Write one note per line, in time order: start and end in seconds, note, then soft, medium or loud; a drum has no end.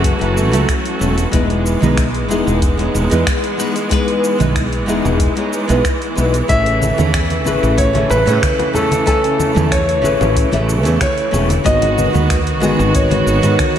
0.00 0.11 F#1 loud
0.00 1.29 E3 medium
0.00 0.16 F#3 loud
0.00 0.16 A3 medium
0.00 1.29 A3 medium
0.00 0.17 C#4 medium
0.00 1.30 C#4 medium
0.00 0.17 E4 medium
0.00 1.29 F#4 medium
0.00 0.18 G#4 medium
0.04 kick loud
0.04 open hi-hat medium
0.04 shaker soft
0.19 0.53 F#1 loud
0.19 0.48 F#3 medium
0.19 0.49 A3 medium
0.19 0.49 C#4 medium
0.19 0.49 E4 medium
0.19 0.50 B4 medium
0.19 open hi-hat soft
0.37 shaker medium
0.52 0.64 C#2 medium
0.52 0.67 F#3 medium
0.52 0.67 A3 medium
0.52 0.67 C#4 medium
0.52 0.68 E4 medium
0.52 0.68 A4 loud
0.52 open hi-hat soft
0.52 shaker soft
0.69 finger snap loud
0.69 kick loud
0.69 open hi-hat medium
0.69 shaker soft
0.85 open hi-hat soft
0.99 1.24 E1 medium
0.99 1.16 F#3 medium
0.99 1.16 A3 medium
0.99 1.16 C#4 medium
0.99 1.17 E4 medium
0.99 1.17 A4 medium
0.99 shaker medium
1.18 open hi-hat soft
1.18 shaker soft
1.31 1.74 E1 loud
1.31 11.62 E3 medium
1.31 1.77 G#3 medium
1.31 6.45 G#3 medium
1.31 1.78 B3 medium
1.31 6.46 B3 medium
1.31 1.78 D#4 medium
1.31 1.79 E4 medium
1.31 1.79 B4 loud
1.31 kick loud
1.31 open hi-hat medium
1.31 shaker soft
1.50 open hi-hat soft
1.66 shaker medium
1.80 2.30 B1 medium
1.80 2.05 G#3 medium
1.80 2.05 B3 medium
1.80 2.05 D#4 medium
1.80 2.06 E4 medium
1.80 2.06 B4 medium
1.80 low conga medium
1.80 shaker soft
1.97 finger snap loud
1.97 kick loud
1.97 open hi-hat medium
1.97 shaker soft
2.14 open hi-hat soft
2.28 2.42 E1 medium
2.28 2.74 G#3 loud
2.28 2.75 B3 medium
2.28 2.75 D#4 medium
2.28 2.75 E4 medium
2.28 2.76 G#4 loud
2.28 shaker medium
2.47 2.87 E1 loud
2.47 shaker soft
2.62 kick loud
2.62 open hi-hat medium
2.62 shaker soft
2.77 3.06 G#3 medium
2.77 3.07 B3 medium
2.77 3.07 D#4 medium
2.77 3.08 E4 medium
2.77 3.08 C#5 medium
2.77 open hi-hat soft
2.94 3.06 E1 loud
2.94 shaker medium
3.10 3.23 E2 loud
3.10 3.25 G#3 loud
3.10 3.25 B3 medium
3.10 3.25 D#4 medium
3.10 3.26 E4 medium
3.10 3.26 B4 loud
3.10 open hi-hat soft
3.10 shaker soft
3.27 finger snap loud
3.27 kick loud
3.27 open hi-hat medium
3.27 shaker soft
3.44 open hi-hat soft
3.57 3.74 G#3 medium
3.57 3.74 B3 medium
3.57 3.74 D#4 medium
3.57 3.75 B4 medium
3.57 shaker medium
3.76 open hi-hat soft
3.76 shaker soft
3.89 4.35 G#3 medium
3.89 4.36 B3 medium
3.89 4.36 D#4 medium
3.89 4.37 B4 loud
3.89 kick loud
3.89 open hi-hat medium
3.89 shaker soft
4.08 open hi-hat soft
4.24 shaker medium
4.38 4.88 B1 medium
4.38 4.63 G#3 medium
4.38 4.63 B3 medium
4.38 4.63 D#4 medium
4.38 4.64 E4 medium
4.38 4.64 B4 medium
4.38 open hi-hat soft
4.38 low conga medium
4.38 shaker soft
4.56 finger snap loud
4.56 kick loud
4.56 open hi-hat medium
4.56 shaker soft
4.73 open hi-hat soft
4.86 5.00 E1 medium
4.86 5.32 G#3 loud
4.86 5.32 B3 medium
4.86 5.33 D#4 medium
4.86 5.33 E4 medium
4.86 5.34 G#4 loud
4.86 shaker medium
5.05 5.27 E1 loud
5.05 shaker soft
5.20 kick loud
5.20 open hi-hat medium
5.20 shaker soft
5.35 5.64 G#3 medium
5.35 5.65 B3 medium
5.35 5.65 D#4 medium
5.35 5.66 E4 medium
5.35 5.66 C#5 medium
5.35 open hi-hat soft
5.53 shaker medium
5.68 5.80 B1 medium
5.68 5.83 G#3 medium
5.68 5.83 B3 medium
5.68 5.83 D#4 medium
5.68 5.84 E4 medium
5.68 5.84 B4 loud
5.68 open hi-hat soft
5.68 shaker soft
5.85 finger snap loud
5.85 kick loud
5.85 open hi-hat medium
5.85 shaker soft
6.02 open hi-hat soft
6.15 6.41 B1 medium
6.15 6.32 G#3 medium
6.15 6.32 B3 medium
6.15 6.33 D#4 medium
6.15 6.33 E4 medium
6.15 6.33 B4 medium
6.15 shaker medium
6.34 open hi-hat soft
6.34 shaker soft
6.48 6.91 A1 loud
6.48 11.61 C#3 medium
6.48 6.94 A3 medium
6.48 11.61 A3 medium
6.48 6.94 C#4 medium
6.48 6.94 E4 medium
6.48 6.95 G#4 medium
6.48 6.95 C#5 loud
6.48 7.74 E5 loud
6.48 kick loud
6.48 open hi-hat medium
6.48 muted conga soft
6.48 shaker soft
6.66 open hi-hat soft
6.82 high conga medium
6.82 shaker medium
6.97 7.46 E2 medium
6.97 7.21 A3 medium
6.97 7.22 C#4 medium
6.97 7.22 E4 medium
6.97 7.22 G#4 medium
6.97 7.23 C#5 medium
6.97 muted conga medium
6.97 low conga medium
6.97 shaker soft
7.14 finger snap loud
7.14 kick loud
7.14 open hi-hat medium
7.14 shaker soft
7.30 open hi-hat soft
7.30 muted conga soft
7.44 7.58 A1 medium
7.44 7.90 A3 medium
7.44 7.91 C#4 medium
7.44 7.91 E4 medium
7.44 7.91 G#4 medium
7.44 7.92 B4 loud
7.44 high conga medium
7.44 shaker medium
7.63 8.03 A1 medium
7.63 shaker soft
7.78 8.11 C#5 loud
7.78 kick loud
7.78 open hi-hat medium
7.78 muted conga medium
7.78 shaker soft
7.93 8.22 A3 medium
7.93 8.23 C#4 medium
7.93 8.23 E4 medium
7.93 8.24 G#4 medium
7.93 8.24 E5 medium
7.93 open hi-hat soft
7.93 high conga medium
8.10 8.22 A1 loud
8.10 8.77 B4 loud
8.10 muted conga medium
8.10 shaker medium
8.26 8.38 A2 loud
8.26 8.41 A3 medium
8.26 8.41 C#4 medium
8.26 8.41 E4 medium
8.26 8.42 G#4 medium
8.26 8.42 C#5 loud
8.26 open hi-hat soft
8.26 shaker soft
8.43 finger snap loud
8.43 kick loud
8.43 open hi-hat medium
8.43 high conga medium
8.43 shaker soft
8.60 open hi-hat soft
8.60 muted conga medium
8.73 8.90 A3 medium
8.73 8.90 C#4 medium
8.73 8.90 E4 medium
8.73 8.91 G#4 medium
8.73 9.06 A4 medium
8.73 8.91 C#5 medium
8.73 low conga medium
8.73 shaker medium
8.91 open hi-hat soft
8.91 muted conga medium
8.91 high conga loud
8.91 shaker soft
9.06 9.52 A3 medium
9.06 9.52 C#4 medium
9.06 9.52 E4 medium
9.06 9.74 A4 loud
9.06 9.53 C#5 loud
9.06 9.53 G#5 medium
9.06 kick loud
9.06 open hi-hat medium
9.06 shaker soft
9.24 open hi-hat soft
9.40 muted conga medium
9.40 high conga loud
9.40 shaker medium
9.54 10.04 E2 medium
9.54 9.79 A3 medium
9.54 9.79 C#4 medium
9.54 9.80 E4 medium
9.54 9.80 G#4 medium
9.54 9.80 C#5 medium
9.54 low conga medium
9.54 shaker soft
9.72 11.00 C#5 loud
9.72 finger snap medium
9.72 kick medium
9.72 open hi-hat medium
9.72 muted conga medium
9.72 shaker soft
9.89 open hi-hat soft
10.02 10.16 A1 medium
10.02 10.48 A3 medium
10.02 10.48 C#4 medium
10.02 10.49 E4 medium
10.02 10.49 G#4 medium
10.02 10.50 B4 loud
10.02 high conga medium
10.02 shaker medium
10.21 10.43 A1 loud
10.21 muted conga medium
10.21 shaker soft
10.36 kick loud
10.36 open hi-hat medium
10.36 shaker soft
10.51 10.85 A1 loud
10.51 10.80 A3 medium
10.51 10.81 C#4 medium
10.51 10.81 E4 medium
10.51 10.81 G#4 medium
10.51 10.82 E5 medium
10.51 open hi-hat soft
10.51 muted conga medium
10.51 high conga loud
10.69 shaker medium
10.83 10.96 E2 medium
10.83 10.99 A3 medium
10.83 10.99 C#4 medium
10.83 10.99 E4 medium
10.83 11.00 G#4 medium
10.83 11.00 C#5 loud
10.83 open hi-hat soft
10.83 shaker soft
11.01 11.68 C#5 medium
11.01 finger snap medium
11.01 kick medium
11.01 open hi-hat medium
11.01 muted conga medium
11.01 high conga medium
11.01 shaker soft
11.18 open hi-hat soft
11.31 11.57 E1 loud
11.31 11.48 A3 medium
11.31 11.48 C#4 medium
11.31 11.48 E4 medium
11.31 11.49 G#4 medium
11.31 11.49 C#5 medium
11.31 muted conga medium
11.31 low conga medium
11.31 shaker medium
11.49 open hi-hat soft
11.49 high conga medium
11.49 shaker soft
11.64 12.07 G#1 loud
11.64 13.79 D#3 medium
11.64 12.10 G#3 medium
11.64 12.10 B3 medium
11.64 13.79 B3 medium
11.64 12.10 D#4 medium
11.64 13.79 F#4 loud
11.64 12.11 F#4 medium
11.64 12.11 B4 loud
11.64 12.98 D#5 loud
11.64 kick loud
11.64 open hi-hat medium
11.64 shaker soft
11.82 open hi-hat soft
11.82 muted conga medium
11.98 high conga medium
11.98 shaker medium
12.13 12.62 D#2 medium
12.13 12.37 G#3 medium
12.13 12.37 B3 medium
12.13 12.38 D#4 medium
12.13 12.38 F#4 medium
12.13 12.39 B4 medium
12.13 muted conga medium
12.13 low conga medium
12.13 shaker soft
12.30 finger snap loud
12.30 kick medium
12.30 open hi-hat medium
12.30 shaker soft
12.47 open hi-hat soft
12.60 12.74 G#1 medium
12.60 13.06 G#3 medium
12.60 13.07 B3 medium
12.60 13.07 D#4 medium
12.60 13.07 F#4 medium
12.60 13.08 G#4 loud
12.60 muted conga medium
12.60 high conga medium
12.60 shaker medium
12.79 13.20 G#1 loud
12.79 shaker soft
12.95 13.79 C#5 medium
12.95 kick loud
12.95 open hi-hat medium
12.95 muted conga medium
12.95 shaker soft
13.10 13.39 G#3 medium
13.10 13.39 B3 medium
13.10 13.39 D#4 medium
13.10 13.40 F#4 medium
13.10 13.40 C#5 medium
13.10 open hi-hat soft
13.10 high conga medium
13.26 13.39 G#1 loud
13.26 shaker medium
13.42 13.55 G#2 loud
13.42 13.57 G#3 medium
13.42 13.57 B3 medium
13.42 13.58 D#4 medium
13.42 13.58 F#4 medium
13.42 13.59 B4 loud
13.42 open hi-hat soft
13.42 muted conga medium
13.42 shaker soft
13.59 finger snap loud
13.59 kick medium
13.59 open hi-hat medium
13.59 high conga medium
13.59 shaker soft